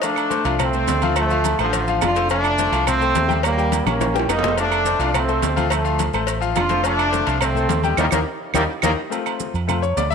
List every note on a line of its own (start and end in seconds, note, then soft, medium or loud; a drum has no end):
0.02 0.26 F3 medium
0.02 0.56 A3 medium
0.02 0.56 D4 loud
0.02 0.26 F4 medium
0.02 0.26 F5 medium
0.02 cowbell loud
0.02 high conga soft
0.02 low agogo loud
0.02 maracas medium
0.16 high conga soft
0.16 low agogo medium
0.16 claves medium
0.16 maracas soft
0.30 0.42 A3 medium
0.30 0.42 A4 medium
0.30 0.42 C5 medium
0.30 cowbell medium
0.30 high conga medium
0.30 low timbale medium
0.30 maracas medium
0.45 0.85 C2 medium
0.45 0.68 F3 medium
0.45 0.68 F4 medium
0.45 0.68 F5 medium
0.45 cowbell medium
0.45 high conga soft
0.45 low agogo medium
0.45 maracas soft
0.59 1.16 A3 medium
0.59 1.17 C4 loud
0.59 cowbell medium
0.59 high conga soft
0.59 low conga medium
0.59 low agogo loud
0.59 claves medium
0.59 maracas medium
0.73 0.97 A3 medium
0.73 0.97 A4 medium
0.73 0.97 C5 medium
0.73 high conga soft
0.73 maracas soft
0.87 1.53 D2 loud
0.87 cowbell medium
0.87 high conga medium
0.87 low timbale loud
0.87 low agogo medium
0.87 maracas medium
1.02 1.14 F3 medium
1.02 1.14 F4 medium
1.02 1.14 F5 medium
1.02 high conga medium
1.02 low agogo medium
1.02 maracas soft
1.16 1.56 F3 medium
1.16 1.28 A3 medium
1.16 1.56 A3 loud
1.16 1.28 A4 medium
1.16 1.29 C5 medium
1.16 cowbell loud
1.16 high conga soft
1.16 low agogo loud
1.16 claves medium
1.16 maracas medium
1.30 1.54 F3 medium
1.30 1.54 F4 medium
1.30 1.54 F5 medium
1.30 high conga soft
1.30 maracas soft
1.44 cowbell medium
1.44 high conga loud
1.44 low timbale medium
1.44 low agogo loud
1.44 maracas medium
1.59 1.98 A1 loud
1.59 1.99 D3 medium
1.59 1.99 F3 loud
1.59 1.83 A3 medium
1.59 1.83 A4 medium
1.59 1.83 C5 medium
1.59 high conga soft
1.59 low agogo loud
1.59 claves medium
1.59 maracas soft
1.73 cowbell loud
1.73 high conga soft
1.73 low agogo medium
1.73 maracas medium
1.88 2.11 F3 medium
1.88 2.11 F4 medium
1.88 2.11 F5 medium
1.88 high conga soft
1.88 maracas soft
2.01 2.67 F1 loud
2.01 2.29 D4 medium
2.01 2.29 F4 loud
2.01 cowbell medium
2.01 high conga medium
2.01 low timbale medium
2.01 low agogo loud
2.01 claves medium
2.01 maracas medium
2.16 2.27 A3 medium
2.16 2.28 A4 medium
2.16 2.28 C5 medium
2.16 cowbell medium
2.16 maracas soft
2.29 2.54 F3 medium
2.29 2.83 A3 medium
2.29 2.83 D4 loud
2.29 2.54 F4 medium
2.29 2.54 F5 medium
2.29 cowbell loud
2.29 high conga soft
2.29 low agogo loud
2.29 maracas medium
2.44 high conga soft
2.44 low agogo medium
2.44 claves medium
2.44 maracas soft
2.58 2.70 A3 medium
2.58 2.70 A4 medium
2.58 2.70 C5 medium
2.58 cowbell medium
2.58 high conga medium
2.58 low timbale medium
2.58 maracas medium
2.72 3.12 C2 loud
2.72 2.96 F3 medium
2.72 2.96 F4 medium
2.72 2.96 F5 medium
2.72 cowbell medium
2.72 high conga soft
2.72 low agogo medium
2.72 maracas soft
2.87 3.41 A3 medium
2.87 3.40 C4 loud
2.87 cowbell loud
2.87 high conga soft
2.87 low conga medium
2.87 low agogo loud
2.87 claves medium
2.87 maracas medium
3.01 3.24 A3 medium
3.01 3.24 A4 medium
3.01 3.25 C5 medium
3.01 high conga soft
3.01 maracas soft
3.15 3.81 D#2 loud
3.15 cowbell medium
3.15 high conga medium
3.15 low timbale medium
3.15 low agogo medium
3.15 maracas medium
3.28 3.40 G3 medium
3.28 3.41 G4 medium
3.28 3.41 G5 loud
3.28 high conga medium
3.28 low agogo medium
3.28 maracas soft
3.43 3.84 G3 medium
3.43 3.55 A#3 medium
3.43 3.84 A#3 loud
3.43 3.55 A#4 medium
3.43 3.55 C#5 medium
3.43 cowbell loud
3.43 high conga soft
3.43 low agogo loud
3.43 claves medium
3.43 maracas medium
3.57 3.81 G3 medium
3.57 3.81 G4 medium
3.57 3.81 G5 medium
3.57 high conga soft
3.57 maracas soft
3.72 cowbell medium
3.72 high conga loud
3.72 low timbale medium
3.72 low agogo medium
3.72 maracas medium
3.86 4.26 A#1 loud
3.86 4.10 A#3 medium
3.86 4.29 A#3 medium
3.86 4.29 C#4 loud
3.86 4.10 A#4 medium
3.86 4.10 C#5 medium
3.86 high conga loud
3.86 low agogo loud
3.86 claves medium
3.86 maracas soft
4.00 cowbell medium
4.00 high conga loud
4.00 high timbale loud
4.00 low agogo medium
4.00 maracas medium
4.14 4.38 G3 medium
4.14 4.38 G4 medium
4.14 4.38 G5 medium
4.14 high bongo medium
4.14 maracas soft
4.19 high timbale medium
4.27 4.94 F1 medium
4.27 4.56 A#3 medium
4.27 4.56 D#4 loud
4.27 cowbell medium
4.27 high bongo loud
4.27 low timbale medium
4.27 low agogo loud
4.27 claves medium
4.27 maracas medium
4.39 low timbale loud
4.43 4.55 A3 medium
4.43 4.55 A4 medium
4.43 4.55 C5 medium
4.43 cowbell medium
4.43 low bongo medium
4.43 low conga medium
4.43 maracas soft
4.48 low timbale medium
4.57 4.81 F3 medium
4.57 5.12 A3 medium
4.57 5.11 D4 loud
4.57 4.81 F4 medium
4.57 4.81 F5 medium
4.57 cowbell loud
4.57 high conga soft
4.57 low agogo medium
4.57 maracas medium
4.71 high conga soft
4.71 low agogo loud
4.71 claves medium
4.71 maracas soft
4.85 4.97 A3 medium
4.85 4.98 A4 medium
4.85 4.98 C5 medium
4.85 cowbell medium
4.85 high conga medium
4.85 low timbale medium
4.85 maracas medium
4.99 5.39 C2 loud
4.99 5.23 F3 medium
4.99 5.23 F4 medium
4.99 5.23 F5 loud
4.99 cowbell medium
4.99 high conga soft
4.99 low agogo medium
4.99 maracas soft
5.14 5.68 A3 medium
5.14 5.67 C4 loud
5.14 cowbell loud
5.14 high conga soft
5.14 low conga medium
5.14 low agogo loud
5.14 claves medium
5.14 maracas medium
5.28 5.52 A3 medium
5.28 5.52 A4 medium
5.28 5.52 C5 medium
5.28 high conga soft
5.28 maracas soft
5.42 6.08 D2 loud
5.42 cowbell medium
5.42 high conga medium
5.42 low timbale medium
5.42 low agogo medium
5.42 maracas medium
5.56 5.68 F3 loud
5.56 5.69 F4 medium
5.56 5.69 F5 loud
5.56 high conga medium
5.56 low agogo medium
5.56 maracas soft
5.70 6.11 F3 medium
5.70 5.83 A3 medium
5.70 6.11 A3 medium
5.70 5.83 A4 medium
5.70 5.83 C5 medium
5.70 cowbell loud
5.70 high conga soft
5.70 low agogo loud
5.70 claves medium
5.70 maracas medium
5.84 6.08 F3 medium
5.84 6.08 F4 medium
5.84 6.09 F5 medium
5.84 high conga soft
5.84 maracas soft
5.99 cowbell medium
5.99 high conga medium
5.99 low timbale medium
5.99 low agogo loud
5.99 maracas medium
6.13 6.53 A1 loud
6.13 6.37 A3 medium
6.13 6.37 A4 medium
6.13 6.37 C5 medium
6.13 high conga soft
6.13 low agogo medium
6.13 claves medium
6.13 maracas soft
6.27 cowbell loud
6.27 high conga soft
6.27 low agogo medium
6.27 maracas medium
6.40 6.65 F3 medium
6.40 6.65 F4 medium
6.40 6.65 F5 medium
6.40 high conga soft
6.40 maracas soft
6.55 7.22 F1 loud
6.55 6.83 D4 medium
6.55 6.83 F4 loud
6.55 cowbell medium
6.55 high conga medium
6.55 low timbale medium
6.55 low agogo loud
6.55 claves medium
6.55 maracas medium
6.69 6.82 A3 medium
6.69 6.82 A4 medium
6.69 6.82 C5 medium
6.69 cowbell medium
6.69 high conga medium
6.69 maracas soft
6.83 7.07 F3 medium
6.83 7.38 A3 medium
6.83 7.37 D4 loud
6.83 7.07 F4 medium
6.83 7.07 F5 medium
6.83 cowbell loud
6.83 high conga soft
6.83 low agogo medium
6.83 maracas medium
6.99 high conga soft
6.99 low agogo loud
6.99 claves medium
6.99 maracas soft
7.11 7.24 A3 medium
7.11 7.24 A4 medium
7.11 7.24 C5 medium
7.11 cowbell medium
7.11 high conga medium
7.11 low timbale medium
7.11 maracas medium
7.26 7.67 C2 loud
7.26 7.50 F3 loud
7.26 7.50 F4 medium
7.26 7.51 F5 medium
7.26 cowbell medium
7.26 high conga soft
7.26 low agogo medium
7.26 maracas soft
7.41 7.98 A3 medium
7.41 7.98 C4 loud
7.41 cowbell loud
7.41 high conga soft
7.41 low conga medium
7.41 low agogo loud
7.41 claves medium
7.41 maracas medium
7.55 7.79 A3 medium
7.55 7.79 A4 medium
7.55 7.79 C5 medium
7.55 high conga soft
7.55 low conga medium
7.55 maracas soft
7.69 7.96 D#2 medium
7.69 cowbell medium
7.69 high conga loud
7.69 low timbale medium
7.69 low agogo medium
7.69 maracas medium
7.83 7.95 G3 medium
7.83 7.96 G4 medium
7.83 7.96 G5 medium
7.83 high conga medium
7.83 low agogo medium
7.83 maracas soft
7.97 8.08 D#2 medium
7.97 8.06 D#3 loud
7.97 8.05 G3 loud
7.97 8.06 A#3 loud
7.97 8.08 D#4 loud
7.97 8.07 G4 medium
7.97 8.07 A#4 medium
7.97 cowbell loud
7.97 high conga loud
7.97 high timbale loud
7.97 claves loud
7.97 maracas medium
8.11 8.23 D#2 loud
8.11 8.19 D#3 medium
8.11 8.19 G3 medium
8.11 8.19 A#3 loud
8.11 8.21 D#4 medium
8.11 8.21 G4 medium
8.11 8.21 A#4 medium
8.11 cowbell loud
8.11 high conga loud
8.11 high timbale loud
8.11 claves loud
8.11 maracas loud
8.54 8.65 D#2 medium
8.54 8.62 D#3 loud
8.54 8.63 G3 loud
8.54 8.62 A#3 loud
8.54 8.64 D#4 loud
8.54 8.64 G4 medium
8.54 8.64 A#4 medium
8.54 cowbell medium
8.54 high conga loud
8.54 high timbale loud
8.54 claves loud
8.54 maracas loud
8.82 8.94 D#2 loud
8.82 8.91 D#3 medium
8.82 8.91 G3 medium
8.82 8.91 A#3 loud
8.82 8.92 D#4 loud
8.82 8.92 G4 medium
8.82 8.92 A#4 loud
8.82 cowbell loud
8.82 high conga loud
8.82 high timbale loud
8.82 claves loud
8.82 maracas loud
9.10 9.52 A3 medium
9.10 9.52 C4 soft
9.10 9.52 F4 medium
9.10 high conga soft
9.10 low agogo medium
9.10 maracas medium
9.26 high conga soft
9.26 low agogo medium
9.26 claves medium
9.26 maracas soft
9.40 high conga medium
9.40 low timbale medium
9.40 maracas medium
9.54 9.94 F2 loud
9.54 high conga soft
9.54 low agogo medium
9.54 maracas soft
9.67 9.81 A3 soft
9.67 9.81 C4 soft
9.67 9.81 F4 soft
9.67 high conga soft
9.67 low conga medium
9.67 low agogo loud
9.67 claves medium
9.67 maracas medium
9.82 9.97 C#5 medium
9.82 high conga soft
9.82 maracas soft
9.97 10.15 D2 medium
9.97 10.11 D5 medium
9.97 high conga medium
9.97 low timbale medium
9.97 low agogo medium
9.97 maracas medium
10.10 10.15 E5 loud
10.10 maracas soft